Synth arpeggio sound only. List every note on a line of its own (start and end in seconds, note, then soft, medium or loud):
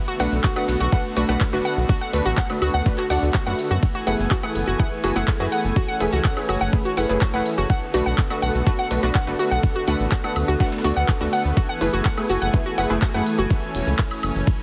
0.08 0.13 F#4 medium
0.20 0.28 F#5 loud
0.44 0.49 F#4 medium
0.56 0.64 F#5 loud
0.80 0.86 F#4 medium
0.92 1.00 F#5 loud
1.17 1.22 F#4 medium
1.29 1.36 F#5 loud
1.53 1.58 F#4 medium
1.65 1.73 F#5 loud
1.89 1.94 F#4 medium
2.01 2.09 F#5 loud
2.25 2.31 F#4 medium
2.38 2.45 F#5 loud
2.62 2.67 F#4 medium
2.74 2.82 F#5 loud
2.98 3.03 F#4 medium
3.10 3.18 F#5 loud
3.34 3.40 F#4 medium
3.46 3.54 F#5 loud
3.71 3.76 F#4 medium
3.95 4.00 F#4 medium
4.07 4.15 F#5 loud
4.31 4.36 F#4 medium
4.43 4.51 F#5 loud
4.67 4.73 F#4 medium
4.80 4.87 F#5 loud
5.04 5.09 F#4 medium
5.16 5.24 F#5 loud
5.40 5.45 F#4 medium
5.52 5.60 F#5 loud
5.76 5.81 F#4 medium
5.88 5.96 F#5 loud
6.13 6.18 F#4 medium
6.25 6.32 F#5 loud
6.49 6.54 F#4 medium
6.61 6.69 F#5 loud
6.85 6.90 F#4 medium
6.97 7.05 F#5 loud
7.21 7.27 F#4 medium
7.34 7.41 F#5 loud
7.58 7.63 F#4 medium
7.70 7.78 F#5 loud
7.94 7.99 F#4 medium
8.06 8.14 F#5 loud
8.30 8.35 F#4 medium
8.42 8.50 F#5 loud
8.67 8.72 F#4 medium
8.79 8.86 F#5 loud
9.03 9.08 F#4 medium
9.15 9.23 F#5 loud
9.39 9.44 F#4 medium
9.51 9.59 F#5 loud
9.76 9.81 F#4 medium
9.88 9.95 F#5 loud
10.12 10.17 F#4 medium
10.24 10.32 F#5 loud
10.48 10.53 F#4 medium
10.60 10.68 F#5 loud
10.84 10.90 F#4 medium
10.96 11.04 F#5 loud
11.21 11.26 F#4 medium
11.33 11.40 F#5 loud
11.57 11.62 F#4 medium
11.69 11.77 F#5 loud
11.93 11.98 F#4 medium
12.05 12.13 F#5 loud
12.30 12.35 F#4 medium
12.42 12.49 F#5 loud
12.66 12.71 F#4 medium
12.78 12.86 F#5 loud
13.02 13.07 F#4 medium
13.14 13.22 F#5 loud
13.38 13.44 F#4 medium